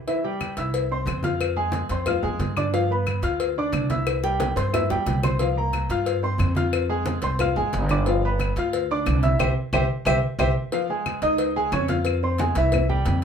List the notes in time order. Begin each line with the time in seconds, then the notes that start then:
0.07 E3 E4 E5, cowbell, high conga
0.24 G3 G4 G5, high conga
0.41 cowbell, high conga, claves
0.57 C2 E4 E5 E6, cowbell
0.74 cowbell, high conga
0.89 C4 C5 C6, high conga
1.06 F2, cowbell, high conga, claves
1.23 F4 F5 F6, cowbell, high conga
1.40 cowbell, high conga, claves
1.56 G#3 G#4 G#5, high conga
1.72 cowbell, high conga
1.89 F2 C4 C5 C6, cowbell, high conga
2.06 F4 F5 F6, cowbell, high conga, low conga, claves
2.23 F2 G#3 G#4 G#5, high conga, low conga
2.39 G2, cowbell, high conga
2.57 D4 D5 D6, cowbell, high conga, claves
2.73 F3 F4 F5, cowbell, high conga
2.90 B3 B4 B5, high conga
3.07 cowbell, high conga, claves
3.22 D2 F4 F5 F6, cowbell, high conga
3.40 cowbell, high conga
3.56 D4 D5 D6, high conga
3.72 C2, cowbell, high conga, claves
3.90 E4 E5 E6, cowbell, high conga
4.07 cowbell, high bongo, high conga, claves
4.23 G3 G4 G5, high bongo, high conga
4.40 cowbell, high bongo, high conga
4.56 G2 C4 C5 C6, cowbell, high bongo
4.73 E4 E5 E6, cowbell, low bongo, high conga, low conga, claves
4.90 C#2 G3 G4 G5, low bongo, high conga, low conga
5.06 C2, cowbell, low bongo, high conga
5.23 C4 C5 C6, cowbell, low bongo, high conga, claves
5.39 F3 F4 F5, cowbell, high conga
5.57 A#3 A#4 A#5, high conga
5.73 cowbell, high conga, claves
5.89 G2 F4 F5 F6, cowbell, high conga
6.06 cowbell, high conga
6.23 C4 C5 C6, high conga
6.38 F2, cowbell, high conga, claves
6.55 F4 F5 F6, cowbell, high conga
6.73 cowbell, high conga, claves
6.89 G#3 G#4 G#5, high conga
7.06 cowbell, high conga
7.22 C2 C4 C5 C6, cowbell, high conga
7.39 F4 F5 F6, cowbell, high conga, low conga, claves
7.56 G#1 G#3 G#4 G#5, high conga, low conga
7.73 G1, cowbell, high conga
7.89 D4 D5 D6, cowbell, high conga, claves
8.06 F3 F4 F5, cowbell, high conga
8.23 B3 B4 B5, high conga
8.39 cowbell, high conga, claves
8.56 D2 F4 F5 F6, cowbell, high conga
8.73 cowbell, high conga
8.90 D4 D5 D6, high conga
9.06 C2, cowbell, high conga, claves
9.23 E4 E5 E6, cowbell, high conga
9.39 C2 G4 C5 E5, cowbell, high conga, claves
9.73 C2 G4 C5 E5, cowbell, high conga, claves
10.05 C2 G4 C5 E5, cowbell, high conga, claves
10.39 C2 G4 C5 E5, cowbell, high conga, claves
10.72 F3 F4 F5, cowbell, high conga
10.90 G#3 G#4 G#5, high conga
11.06 cowbell, high conga, claves
11.22 C#2 D#4 D#5 D#6, cowbell, high conga
11.38 cowbell, high conga
11.56 G#3 G#4 G#5, high conga
11.72 F2 C#4 C#5 C#6, cowbell, high conga, claves
11.88 F4 F5 F6, cowbell, high conga
12.05 cowbell, high conga, claves
12.23 C4 C5 C6, high conga
12.38 G#3 G#4 G#5, cowbell, high conga
12.55 C2 E3 E4 E5, cowbell, high conga
12.72 cowbell, high conga, low conga, claves
12.89 G3 G4 G5, high conga, low conga
13.05 F2, cowbell, high conga